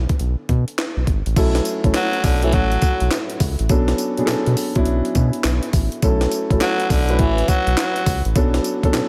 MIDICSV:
0, 0, Header, 1, 5, 480
1, 0, Start_track
1, 0, Key_signature, 2, "minor"
1, 0, Tempo, 582524
1, 1126, Time_signature, 4, 2, 24, 8
1, 7486, End_track
2, 0, Start_track
2, 0, Title_t, "Grand piano"
2, 0, Program_c, 0, 0
2, 0, Control_c, 0, 64, 127
2, 0, Note_on_c, 0, 50, 80
2, 0, Note_on_c, 0, 59, 70
2, 0, Note_on_c, 0, 61, 73
2, 0, Note_on_c, 0, 69, 84
2, 1090, Note_off_c, 0, 50, 0
2, 1094, Note_off_c, 0, 59, 0
2, 1096, Note_off_c, 0, 61, 0
2, 1100, Note_off_c, 0, 69, 0
2, 1126, Note_on_c, 0, 54, 99
2, 1128, Note_on_c, 0, 57, 81
2, 1130, Note_on_c, 0, 61, 86
2, 1133, Note_on_c, 0, 64, 92
2, 1135, Note_on_c, 0, 69, 100
2, 1136, Control_c, 0, 64, 0
2, 1273, Control_c, 0, 64, 127
2, 1411, Note_off_c, 0, 54, 0
2, 1412, Note_off_c, 0, 57, 0
2, 1413, Note_off_c, 0, 61, 0
2, 1414, Note_off_c, 0, 64, 0
2, 1415, Note_off_c, 0, 69, 0
2, 1523, Note_on_c, 0, 54, 77
2, 1526, Note_on_c, 0, 57, 74
2, 1527, Note_on_c, 0, 61, 69
2, 1529, Note_on_c, 0, 64, 72
2, 1532, Note_on_c, 0, 69, 86
2, 1855, Note_off_c, 0, 54, 0
2, 1857, Note_off_c, 0, 57, 0
2, 1858, Note_off_c, 0, 61, 0
2, 1859, Note_off_c, 0, 64, 0
2, 1860, Note_off_c, 0, 69, 0
2, 2004, Note_on_c, 0, 54, 83
2, 2005, Note_on_c, 0, 57, 72
2, 2008, Note_on_c, 0, 61, 74
2, 2011, Note_on_c, 0, 64, 69
2, 2012, Note_on_c, 0, 69, 81
2, 2731, Note_off_c, 0, 54, 0
2, 2732, Note_off_c, 0, 57, 0
2, 2733, Note_off_c, 0, 61, 0
2, 2735, Note_off_c, 0, 64, 0
2, 2735, Note_off_c, 0, 69, 0
2, 3048, Note_on_c, 0, 54, 99
2, 3051, Note_on_c, 0, 59, 86
2, 3053, Note_on_c, 0, 61, 86
2, 3054, Note_on_c, 0, 62, 89
2, 3057, Control_c, 0, 64, 0
2, 3058, Note_on_c, 0, 69, 102
2, 3215, Control_c, 0, 64, 127
2, 3332, Note_off_c, 0, 54, 0
2, 3333, Note_off_c, 0, 59, 0
2, 3334, Note_off_c, 0, 61, 0
2, 3335, Note_off_c, 0, 62, 0
2, 3336, Note_off_c, 0, 69, 0
2, 3444, Note_on_c, 0, 54, 92
2, 3447, Note_on_c, 0, 59, 89
2, 3449, Note_on_c, 0, 61, 86
2, 3452, Note_on_c, 0, 62, 86
2, 3455, Note_on_c, 0, 68, 81
2, 3485, Note_off_c, 0, 68, 0
2, 3508, Note_on_c, 0, 69, 105
2, 3776, Note_off_c, 0, 54, 0
2, 3778, Note_off_c, 0, 59, 0
2, 3779, Note_off_c, 0, 61, 0
2, 3780, Note_off_c, 0, 62, 0
2, 3808, Note_off_c, 0, 69, 0
2, 3923, Note_on_c, 0, 54, 100
2, 3925, Note_on_c, 0, 59, 91
2, 3927, Note_on_c, 0, 61, 86
2, 3930, Note_on_c, 0, 62, 90
2, 3932, Note_on_c, 0, 64, 102
2, 4651, Note_off_c, 0, 54, 0
2, 4652, Note_off_c, 0, 59, 0
2, 4653, Note_off_c, 0, 61, 0
2, 4654, Note_off_c, 0, 62, 0
2, 4655, Note_off_c, 0, 64, 0
2, 4968, Note_on_c, 0, 54, 93
2, 4971, Note_on_c, 0, 57, 88
2, 4974, Note_on_c, 0, 61, 86
2, 4975, Note_on_c, 0, 64, 81
2, 4976, Control_c, 0, 64, 0
2, 4978, Note_on_c, 0, 69, 101
2, 5098, Control_c, 0, 64, 127
2, 5252, Note_off_c, 0, 54, 0
2, 5253, Note_off_c, 0, 57, 0
2, 5254, Note_off_c, 0, 61, 0
2, 5255, Note_off_c, 0, 64, 0
2, 5257, Note_off_c, 0, 69, 0
2, 5362, Note_on_c, 0, 54, 79
2, 5364, Note_on_c, 0, 57, 72
2, 5366, Note_on_c, 0, 61, 71
2, 5368, Note_on_c, 0, 64, 70
2, 5371, Note_on_c, 0, 69, 92
2, 5695, Note_off_c, 0, 54, 0
2, 5696, Note_off_c, 0, 57, 0
2, 5697, Note_off_c, 0, 61, 0
2, 5698, Note_off_c, 0, 64, 0
2, 5700, Note_off_c, 0, 69, 0
2, 5844, Note_on_c, 0, 54, 78
2, 5846, Note_on_c, 0, 57, 72
2, 5849, Note_on_c, 0, 61, 78
2, 5851, Note_on_c, 0, 64, 77
2, 5853, Note_on_c, 0, 71, 90
2, 6571, Note_off_c, 0, 54, 0
2, 6572, Note_off_c, 0, 57, 0
2, 6574, Note_off_c, 0, 61, 0
2, 6575, Note_off_c, 0, 64, 0
2, 6576, Note_off_c, 0, 71, 0
2, 6885, Note_on_c, 0, 54, 98
2, 6887, Note_on_c, 0, 59, 89
2, 6890, Note_on_c, 0, 61, 85
2, 6892, Note_on_c, 0, 62, 91
2, 6894, Control_c, 0, 64, 0
2, 6894, Note_on_c, 0, 69, 102
2, 7066, Control_c, 0, 64, 127
2, 7170, Note_off_c, 0, 54, 0
2, 7171, Note_off_c, 0, 59, 0
2, 7173, Note_off_c, 0, 61, 0
2, 7174, Note_off_c, 0, 62, 0
2, 7175, Note_off_c, 0, 69, 0
2, 7282, Note_on_c, 0, 54, 91
2, 7284, Note_on_c, 0, 59, 82
2, 7286, Note_on_c, 0, 61, 87
2, 7289, Note_on_c, 0, 62, 83
2, 7292, Note_on_c, 0, 69, 103
2, 7486, Note_off_c, 0, 54, 0
2, 7486, Note_off_c, 0, 59, 0
2, 7486, Note_off_c, 0, 61, 0
2, 7486, Note_off_c, 0, 62, 0
2, 7486, Note_off_c, 0, 69, 0
2, 7486, End_track
3, 0, Start_track
3, 0, Title_t, "Tenor saxophone"
3, 0, Program_c, 1, 66
3, 1610, Note_on_c, 1, 54, 108
3, 1850, Note_on_c, 1, 50, 92
3, 1863, Note_off_c, 1, 54, 0
3, 2007, Note_on_c, 1, 52, 95
3, 2020, Note_off_c, 1, 50, 0
3, 2093, Note_on_c, 1, 54, 92
3, 2105, Note_off_c, 1, 52, 0
3, 2569, Note_off_c, 1, 54, 0
3, 5452, Note_on_c, 1, 54, 109
3, 5689, Note_on_c, 1, 50, 98
3, 5702, Note_off_c, 1, 54, 0
3, 5932, Note_on_c, 1, 52, 96
3, 5945, Note_off_c, 1, 50, 0
3, 6172, Note_on_c, 1, 54, 103
3, 6184, Note_off_c, 1, 52, 0
3, 6408, Note_off_c, 1, 54, 0
3, 6416, Note_on_c, 1, 54, 90
3, 6778, Note_off_c, 1, 54, 0
3, 7486, End_track
4, 0, Start_track
4, 0, Title_t, "Analog synth bass"
4, 0, Program_c, 2, 38
4, 165, Note_on_c, 2, 35, 95
4, 294, Note_off_c, 2, 35, 0
4, 405, Note_on_c, 2, 47, 99
4, 534, Note_off_c, 2, 47, 0
4, 798, Note_on_c, 2, 35, 88
4, 870, Note_off_c, 2, 35, 0
4, 884, Note_on_c, 2, 32, 89
4, 1013, Note_off_c, 2, 32, 0
4, 1040, Note_on_c, 2, 33, 90
4, 1111, Note_off_c, 2, 33, 0
4, 1124, Note_on_c, 2, 35, 115
4, 1325, Note_off_c, 2, 35, 0
4, 1518, Note_on_c, 2, 33, 101
4, 1590, Note_off_c, 2, 33, 0
4, 1845, Note_on_c, 2, 35, 109
4, 2088, Note_on_c, 2, 33, 105
4, 2100, Note_off_c, 2, 35, 0
4, 2287, Note_off_c, 2, 33, 0
4, 2482, Note_on_c, 2, 35, 93
4, 2553, Note_off_c, 2, 35, 0
4, 2806, Note_on_c, 2, 37, 93
4, 2935, Note_off_c, 2, 37, 0
4, 2964, Note_on_c, 2, 33, 83
4, 3034, Note_off_c, 2, 33, 0
4, 3046, Note_on_c, 2, 35, 117
4, 3246, Note_off_c, 2, 35, 0
4, 3446, Note_on_c, 2, 47, 50
4, 3479, Note_off_c, 2, 47, 0
4, 3530, Note_on_c, 2, 47, 50
4, 3590, Note_off_c, 2, 47, 0
4, 3684, Note_on_c, 2, 47, 102
4, 3754, Note_off_c, 2, 47, 0
4, 3922, Note_on_c, 2, 35, 99
4, 3993, Note_off_c, 2, 35, 0
4, 4008, Note_on_c, 2, 35, 99
4, 4136, Note_off_c, 2, 35, 0
4, 4248, Note_on_c, 2, 47, 110
4, 4376, Note_off_c, 2, 47, 0
4, 4487, Note_on_c, 2, 35, 103
4, 4615, Note_off_c, 2, 35, 0
4, 4724, Note_on_c, 2, 33, 96
4, 4854, Note_off_c, 2, 33, 0
4, 4967, Note_on_c, 2, 35, 120
4, 5167, Note_off_c, 2, 35, 0
4, 5360, Note_on_c, 2, 33, 99
4, 5432, Note_off_c, 2, 33, 0
4, 5687, Note_on_c, 2, 35, 108
4, 5928, Note_on_c, 2, 33, 105
4, 5941, Note_off_c, 2, 35, 0
4, 6128, Note_off_c, 2, 33, 0
4, 6320, Note_on_c, 2, 35, 88
4, 6391, Note_off_c, 2, 35, 0
4, 6646, Note_on_c, 2, 37, 92
4, 6775, Note_off_c, 2, 37, 0
4, 6800, Note_on_c, 2, 33, 87
4, 6872, Note_off_c, 2, 33, 0
4, 6886, Note_on_c, 2, 35, 113
4, 7086, Note_off_c, 2, 35, 0
4, 7279, Note_on_c, 2, 47, 52
4, 7313, Note_off_c, 2, 47, 0
4, 7367, Note_on_c, 2, 47, 47
4, 7428, Note_off_c, 2, 47, 0
4, 7486, End_track
5, 0, Start_track
5, 0, Title_t, "Drums"
5, 77, Note_on_c, 9, 42, 60
5, 78, Note_on_c, 9, 36, 100
5, 159, Note_off_c, 9, 42, 0
5, 161, Note_off_c, 9, 36, 0
5, 161, Note_on_c, 9, 42, 71
5, 243, Note_off_c, 9, 42, 0
5, 404, Note_on_c, 9, 36, 91
5, 404, Note_on_c, 9, 42, 70
5, 486, Note_off_c, 9, 42, 0
5, 487, Note_off_c, 9, 36, 0
5, 559, Note_on_c, 9, 42, 52
5, 641, Note_off_c, 9, 42, 0
5, 647, Note_on_c, 9, 38, 106
5, 648, Note_on_c, 9, 42, 61
5, 650, Note_on_c, 9, 39, 86
5, 729, Note_off_c, 9, 38, 0
5, 730, Note_off_c, 9, 42, 0
5, 732, Note_off_c, 9, 39, 0
5, 883, Note_on_c, 9, 36, 93
5, 884, Note_on_c, 9, 42, 73
5, 966, Note_off_c, 9, 36, 0
5, 966, Note_off_c, 9, 42, 0
5, 1039, Note_on_c, 9, 42, 54
5, 1121, Note_off_c, 9, 42, 0
5, 1124, Note_on_c, 9, 36, 127
5, 1125, Note_on_c, 9, 42, 80
5, 1125, Note_on_c, 9, 49, 113
5, 1125, Note_on_c, 9, 54, 76
5, 1206, Note_off_c, 9, 36, 0
5, 1207, Note_off_c, 9, 42, 0
5, 1207, Note_off_c, 9, 49, 0
5, 1207, Note_off_c, 9, 54, 0
5, 1277, Note_on_c, 9, 38, 67
5, 1281, Note_on_c, 9, 42, 65
5, 1360, Note_off_c, 9, 38, 0
5, 1361, Note_off_c, 9, 42, 0
5, 1361, Note_on_c, 9, 42, 82
5, 1364, Note_on_c, 9, 54, 69
5, 1444, Note_off_c, 9, 42, 0
5, 1446, Note_off_c, 9, 54, 0
5, 1517, Note_on_c, 9, 36, 100
5, 1518, Note_on_c, 9, 42, 56
5, 1600, Note_off_c, 9, 36, 0
5, 1600, Note_off_c, 9, 42, 0
5, 1600, Note_on_c, 9, 54, 88
5, 1601, Note_on_c, 9, 38, 108
5, 1601, Note_on_c, 9, 42, 75
5, 1604, Note_on_c, 9, 39, 82
5, 1683, Note_off_c, 9, 38, 0
5, 1683, Note_off_c, 9, 54, 0
5, 1684, Note_off_c, 9, 42, 0
5, 1686, Note_off_c, 9, 39, 0
5, 1757, Note_on_c, 9, 42, 55
5, 1839, Note_off_c, 9, 42, 0
5, 1843, Note_on_c, 9, 46, 71
5, 1844, Note_on_c, 9, 54, 68
5, 1845, Note_on_c, 9, 36, 88
5, 1926, Note_off_c, 9, 46, 0
5, 1926, Note_off_c, 9, 54, 0
5, 1927, Note_off_c, 9, 36, 0
5, 1998, Note_on_c, 9, 42, 65
5, 2081, Note_off_c, 9, 42, 0
5, 2081, Note_on_c, 9, 42, 79
5, 2087, Note_on_c, 9, 36, 92
5, 2163, Note_off_c, 9, 42, 0
5, 2169, Note_off_c, 9, 36, 0
5, 2238, Note_on_c, 9, 42, 55
5, 2321, Note_off_c, 9, 42, 0
5, 2321, Note_on_c, 9, 42, 74
5, 2324, Note_on_c, 9, 54, 65
5, 2325, Note_on_c, 9, 36, 104
5, 2404, Note_off_c, 9, 42, 0
5, 2407, Note_off_c, 9, 54, 0
5, 2408, Note_off_c, 9, 36, 0
5, 2475, Note_on_c, 9, 42, 57
5, 2558, Note_off_c, 9, 42, 0
5, 2564, Note_on_c, 9, 38, 124
5, 2565, Note_on_c, 9, 42, 64
5, 2565, Note_on_c, 9, 54, 78
5, 2567, Note_on_c, 9, 39, 87
5, 2646, Note_off_c, 9, 38, 0
5, 2647, Note_off_c, 9, 42, 0
5, 2648, Note_off_c, 9, 54, 0
5, 2649, Note_off_c, 9, 39, 0
5, 2716, Note_on_c, 9, 42, 61
5, 2799, Note_off_c, 9, 42, 0
5, 2803, Note_on_c, 9, 46, 83
5, 2803, Note_on_c, 9, 54, 77
5, 2804, Note_on_c, 9, 36, 107
5, 2885, Note_off_c, 9, 46, 0
5, 2885, Note_off_c, 9, 54, 0
5, 2887, Note_off_c, 9, 36, 0
5, 2958, Note_on_c, 9, 42, 60
5, 3041, Note_off_c, 9, 42, 0
5, 3043, Note_on_c, 9, 42, 79
5, 3044, Note_on_c, 9, 54, 82
5, 3045, Note_on_c, 9, 36, 127
5, 3126, Note_off_c, 9, 42, 0
5, 3126, Note_off_c, 9, 54, 0
5, 3128, Note_off_c, 9, 36, 0
5, 3197, Note_on_c, 9, 38, 65
5, 3201, Note_on_c, 9, 42, 60
5, 3280, Note_off_c, 9, 38, 0
5, 3283, Note_off_c, 9, 42, 0
5, 3283, Note_on_c, 9, 42, 85
5, 3285, Note_on_c, 9, 54, 73
5, 3365, Note_off_c, 9, 42, 0
5, 3368, Note_off_c, 9, 54, 0
5, 3440, Note_on_c, 9, 42, 58
5, 3523, Note_off_c, 9, 42, 0
5, 3523, Note_on_c, 9, 54, 98
5, 3524, Note_on_c, 9, 38, 106
5, 3524, Note_on_c, 9, 42, 71
5, 3527, Note_on_c, 9, 39, 80
5, 3606, Note_off_c, 9, 38, 0
5, 3606, Note_off_c, 9, 42, 0
5, 3606, Note_off_c, 9, 54, 0
5, 3609, Note_off_c, 9, 39, 0
5, 3679, Note_on_c, 9, 42, 60
5, 3761, Note_off_c, 9, 42, 0
5, 3764, Note_on_c, 9, 46, 71
5, 3765, Note_on_c, 9, 54, 69
5, 3847, Note_off_c, 9, 46, 0
5, 3847, Note_off_c, 9, 54, 0
5, 3918, Note_on_c, 9, 42, 64
5, 3921, Note_on_c, 9, 36, 103
5, 4000, Note_off_c, 9, 42, 0
5, 4000, Note_on_c, 9, 42, 81
5, 4004, Note_off_c, 9, 36, 0
5, 4083, Note_off_c, 9, 42, 0
5, 4161, Note_on_c, 9, 42, 54
5, 4243, Note_off_c, 9, 42, 0
5, 4243, Note_on_c, 9, 42, 85
5, 4246, Note_on_c, 9, 54, 71
5, 4247, Note_on_c, 9, 36, 106
5, 4326, Note_off_c, 9, 42, 0
5, 4329, Note_off_c, 9, 36, 0
5, 4329, Note_off_c, 9, 54, 0
5, 4394, Note_on_c, 9, 42, 60
5, 4477, Note_off_c, 9, 42, 0
5, 4481, Note_on_c, 9, 38, 108
5, 4483, Note_on_c, 9, 42, 63
5, 4483, Note_on_c, 9, 54, 86
5, 4485, Note_on_c, 9, 39, 95
5, 4564, Note_off_c, 9, 38, 0
5, 4565, Note_off_c, 9, 42, 0
5, 4565, Note_off_c, 9, 54, 0
5, 4567, Note_off_c, 9, 39, 0
5, 4636, Note_on_c, 9, 42, 63
5, 4719, Note_off_c, 9, 42, 0
5, 4723, Note_on_c, 9, 46, 85
5, 4723, Note_on_c, 9, 54, 79
5, 4725, Note_on_c, 9, 36, 104
5, 4805, Note_off_c, 9, 46, 0
5, 4805, Note_off_c, 9, 54, 0
5, 4807, Note_off_c, 9, 36, 0
5, 4878, Note_on_c, 9, 42, 61
5, 4961, Note_off_c, 9, 42, 0
5, 4964, Note_on_c, 9, 42, 87
5, 4964, Note_on_c, 9, 54, 77
5, 4965, Note_on_c, 9, 36, 127
5, 5046, Note_off_c, 9, 42, 0
5, 5047, Note_off_c, 9, 54, 0
5, 5048, Note_off_c, 9, 36, 0
5, 5117, Note_on_c, 9, 38, 65
5, 5121, Note_on_c, 9, 42, 60
5, 5200, Note_off_c, 9, 38, 0
5, 5203, Note_off_c, 9, 42, 0
5, 5204, Note_on_c, 9, 42, 88
5, 5207, Note_on_c, 9, 54, 73
5, 5286, Note_off_c, 9, 42, 0
5, 5289, Note_off_c, 9, 54, 0
5, 5360, Note_on_c, 9, 36, 101
5, 5362, Note_on_c, 9, 42, 60
5, 5442, Note_off_c, 9, 36, 0
5, 5444, Note_off_c, 9, 42, 0
5, 5444, Note_on_c, 9, 54, 101
5, 5445, Note_on_c, 9, 38, 103
5, 5445, Note_on_c, 9, 42, 76
5, 5448, Note_on_c, 9, 39, 82
5, 5527, Note_off_c, 9, 38, 0
5, 5527, Note_off_c, 9, 54, 0
5, 5528, Note_off_c, 9, 42, 0
5, 5530, Note_off_c, 9, 39, 0
5, 5600, Note_on_c, 9, 42, 59
5, 5683, Note_off_c, 9, 42, 0
5, 5687, Note_on_c, 9, 36, 87
5, 5687, Note_on_c, 9, 46, 74
5, 5688, Note_on_c, 9, 54, 63
5, 5769, Note_off_c, 9, 36, 0
5, 5770, Note_off_c, 9, 46, 0
5, 5770, Note_off_c, 9, 54, 0
5, 5839, Note_on_c, 9, 42, 63
5, 5922, Note_off_c, 9, 42, 0
5, 5923, Note_on_c, 9, 42, 80
5, 5928, Note_on_c, 9, 36, 100
5, 6005, Note_off_c, 9, 42, 0
5, 6010, Note_off_c, 9, 36, 0
5, 6083, Note_on_c, 9, 42, 56
5, 6165, Note_off_c, 9, 42, 0
5, 6165, Note_on_c, 9, 42, 79
5, 6167, Note_on_c, 9, 36, 97
5, 6168, Note_on_c, 9, 54, 72
5, 6247, Note_off_c, 9, 42, 0
5, 6249, Note_off_c, 9, 36, 0
5, 6251, Note_off_c, 9, 54, 0
5, 6320, Note_on_c, 9, 42, 62
5, 6403, Note_off_c, 9, 42, 0
5, 6406, Note_on_c, 9, 38, 117
5, 6407, Note_on_c, 9, 42, 68
5, 6407, Note_on_c, 9, 54, 87
5, 6409, Note_on_c, 9, 39, 101
5, 6488, Note_off_c, 9, 38, 0
5, 6489, Note_off_c, 9, 42, 0
5, 6490, Note_off_c, 9, 54, 0
5, 6491, Note_off_c, 9, 39, 0
5, 6559, Note_on_c, 9, 42, 64
5, 6641, Note_off_c, 9, 42, 0
5, 6645, Note_on_c, 9, 36, 104
5, 6645, Note_on_c, 9, 46, 91
5, 6645, Note_on_c, 9, 54, 75
5, 6727, Note_off_c, 9, 36, 0
5, 6727, Note_off_c, 9, 46, 0
5, 6727, Note_off_c, 9, 54, 0
5, 6799, Note_on_c, 9, 42, 65
5, 6881, Note_off_c, 9, 42, 0
5, 6885, Note_on_c, 9, 36, 127
5, 6885, Note_on_c, 9, 42, 84
5, 6885, Note_on_c, 9, 54, 76
5, 6967, Note_off_c, 9, 42, 0
5, 6968, Note_off_c, 9, 36, 0
5, 6968, Note_off_c, 9, 54, 0
5, 7038, Note_on_c, 9, 38, 67
5, 7041, Note_on_c, 9, 42, 61
5, 7120, Note_off_c, 9, 38, 0
5, 7123, Note_off_c, 9, 42, 0
5, 7123, Note_on_c, 9, 42, 87
5, 7125, Note_on_c, 9, 54, 74
5, 7205, Note_off_c, 9, 42, 0
5, 7208, Note_off_c, 9, 54, 0
5, 7279, Note_on_c, 9, 36, 102
5, 7281, Note_on_c, 9, 42, 57
5, 7362, Note_off_c, 9, 36, 0
5, 7363, Note_off_c, 9, 42, 0
5, 7364, Note_on_c, 9, 38, 104
5, 7364, Note_on_c, 9, 54, 89
5, 7365, Note_on_c, 9, 42, 72
5, 7367, Note_on_c, 9, 39, 83
5, 7446, Note_off_c, 9, 54, 0
5, 7447, Note_off_c, 9, 38, 0
5, 7447, Note_off_c, 9, 42, 0
5, 7450, Note_off_c, 9, 39, 0
5, 7486, End_track
0, 0, End_of_file